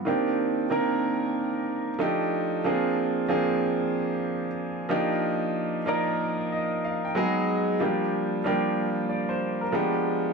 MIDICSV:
0, 0, Header, 1, 2, 480
1, 0, Start_track
1, 0, Key_signature, -3, "minor"
1, 0, Tempo, 645161
1, 42, Time_signature, 4, 2, 24, 8
1, 7687, End_track
2, 0, Start_track
2, 0, Title_t, "Grand piano"
2, 0, Program_c, 0, 0
2, 0, Control_c, 0, 64, 127
2, 38, Note_on_c, 0, 51, 75
2, 45, Note_on_c, 0, 58, 70
2, 48, Note_on_c, 0, 60, 73
2, 50, Control_c, 0, 64, 0
2, 51, Note_on_c, 0, 62, 74
2, 58, Note_on_c, 0, 67, 84
2, 180, Control_c, 0, 64, 127
2, 477, Note_off_c, 0, 51, 0
2, 481, Note_off_c, 0, 58, 0
2, 482, Note_off_c, 0, 60, 0
2, 484, Note_off_c, 0, 62, 0
2, 487, Note_off_c, 0, 67, 0
2, 520, Note_on_c, 0, 51, 81
2, 524, Note_on_c, 0, 58, 75
2, 526, Note_on_c, 0, 60, 69
2, 533, Note_on_c, 0, 62, 71
2, 537, Note_on_c, 0, 70, 92
2, 1396, Note_off_c, 0, 51, 0
2, 1398, Note_off_c, 0, 58, 0
2, 1399, Note_off_c, 0, 60, 0
2, 1402, Note_off_c, 0, 62, 0
2, 1404, Note_off_c, 0, 70, 0
2, 1478, Note_on_c, 0, 53, 88
2, 1485, Note_on_c, 0, 57, 78
2, 1488, Note_on_c, 0, 62, 74
2, 1490, Control_c, 0, 64, 0
2, 1494, Note_on_c, 0, 63, 80
2, 1498, Note_on_c, 0, 67, 100
2, 1628, Control_c, 0, 64, 127
2, 1917, Note_off_c, 0, 53, 0
2, 1920, Note_off_c, 0, 57, 0
2, 1922, Note_off_c, 0, 62, 0
2, 1925, Note_off_c, 0, 63, 0
2, 1927, Note_off_c, 0, 67, 0
2, 1966, Note_on_c, 0, 53, 84
2, 1971, Control_c, 0, 64, 0
2, 1972, Note_on_c, 0, 58, 74
2, 1974, Note_on_c, 0, 60, 74
2, 1981, Note_on_c, 0, 62, 76
2, 1984, Note_on_c, 0, 68, 84
2, 2120, Control_c, 0, 64, 127
2, 2401, Note_off_c, 0, 53, 0
2, 2404, Note_off_c, 0, 58, 0
2, 2405, Note_off_c, 0, 60, 0
2, 2409, Note_off_c, 0, 62, 0
2, 2410, Note_off_c, 0, 68, 0
2, 2444, Note_on_c, 0, 53, 84
2, 2446, Note_on_c, 0, 58, 77
2, 2451, Note_on_c, 0, 60, 76
2, 2453, Note_on_c, 0, 62, 75
2, 2459, Note_on_c, 0, 68, 89
2, 3317, Note_off_c, 0, 53, 0
2, 3319, Note_off_c, 0, 58, 0
2, 3321, Note_off_c, 0, 60, 0
2, 3322, Note_off_c, 0, 62, 0
2, 3325, Note_off_c, 0, 68, 0
2, 3637, Note_on_c, 0, 53, 91
2, 3642, Note_on_c, 0, 58, 80
2, 3646, Note_on_c, 0, 62, 75
2, 3650, Note_on_c, 0, 63, 83
2, 3652, Control_c, 0, 64, 0
2, 3653, Note_on_c, 0, 67, 102
2, 3781, Control_c, 0, 64, 127
2, 4296, Note_off_c, 0, 53, 0
2, 4298, Note_off_c, 0, 58, 0
2, 4300, Note_off_c, 0, 62, 0
2, 4302, Note_off_c, 0, 63, 0
2, 4304, Note_off_c, 0, 67, 0
2, 4359, Note_on_c, 0, 53, 86
2, 4367, Note_on_c, 0, 58, 77
2, 4368, Note_on_c, 0, 74, 76
2, 4374, Note_on_c, 0, 63, 80
2, 4377, Note_on_c, 0, 70, 94
2, 4852, Note_on_c, 0, 75, 63
2, 5075, Note_off_c, 0, 75, 0
2, 5093, Note_on_c, 0, 77, 66
2, 5227, Note_off_c, 0, 77, 0
2, 5235, Note_off_c, 0, 53, 0
2, 5239, Note_off_c, 0, 58, 0
2, 5239, Note_off_c, 0, 74, 0
2, 5242, Note_on_c, 0, 79, 61
2, 5243, Note_off_c, 0, 63, 0
2, 5244, Note_off_c, 0, 70, 0
2, 5318, Note_on_c, 0, 54, 91
2, 5322, Note_on_c, 0, 56, 81
2, 5326, Note_on_c, 0, 59, 82
2, 5331, Control_c, 0, 64, 0
2, 5333, Note_on_c, 0, 63, 82
2, 5335, Note_on_c, 0, 68, 92
2, 5458, Control_c, 0, 64, 127
2, 5464, Note_off_c, 0, 79, 0
2, 5758, Note_off_c, 0, 54, 0
2, 5759, Note_off_c, 0, 56, 0
2, 5761, Note_off_c, 0, 59, 0
2, 5765, Note_off_c, 0, 63, 0
2, 5766, Note_off_c, 0, 68, 0
2, 5801, Note_on_c, 0, 53, 82
2, 5805, Note_on_c, 0, 55, 78
2, 5809, Note_on_c, 0, 58, 76
2, 5811, Control_c, 0, 64, 0
2, 5813, Note_on_c, 0, 62, 77
2, 5818, Note_on_c, 0, 67, 88
2, 5956, Control_c, 0, 64, 127
2, 6239, Note_off_c, 0, 53, 0
2, 6241, Note_off_c, 0, 55, 0
2, 6243, Note_off_c, 0, 58, 0
2, 6245, Note_off_c, 0, 62, 0
2, 6247, Note_off_c, 0, 67, 0
2, 6280, Note_on_c, 0, 53, 86
2, 6284, Note_on_c, 0, 55, 74
2, 6291, Note_on_c, 0, 58, 79
2, 6294, Note_on_c, 0, 62, 74
2, 6297, Note_on_c, 0, 67, 95
2, 6764, Note_on_c, 0, 74, 60
2, 6902, Note_off_c, 0, 74, 0
2, 6912, Note_on_c, 0, 72, 73
2, 7138, Note_off_c, 0, 72, 0
2, 7151, Note_on_c, 0, 70, 60
2, 7156, Note_off_c, 0, 53, 0
2, 7158, Note_off_c, 0, 55, 0
2, 7161, Note_off_c, 0, 58, 0
2, 7162, Note_off_c, 0, 62, 0
2, 7164, Note_off_c, 0, 67, 0
2, 7234, Note_on_c, 0, 53, 87
2, 7237, Note_on_c, 0, 56, 82
2, 7241, Note_on_c, 0, 59, 77
2, 7248, Note_on_c, 0, 62, 74
2, 7252, Control_c, 0, 64, 0
2, 7253, Note_on_c, 0, 67, 99
2, 7362, Control_c, 0, 64, 127
2, 7378, Note_off_c, 0, 70, 0
2, 7675, Note_off_c, 0, 53, 0
2, 7677, Note_off_c, 0, 56, 0
2, 7679, Note_off_c, 0, 59, 0
2, 7682, Note_off_c, 0, 62, 0
2, 7685, Note_off_c, 0, 67, 0
2, 7687, End_track
0, 0, End_of_file